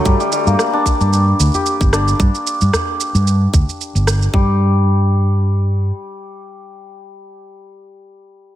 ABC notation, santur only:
X:1
M:4/4
L:1/16
Q:"Swing 16ths" 1/4=112
K:Gm
V:1 name="Santur"
G, G, G, B,2 D z D4 G z2 D z | z16 | G,2 z12 z2 | z16 |]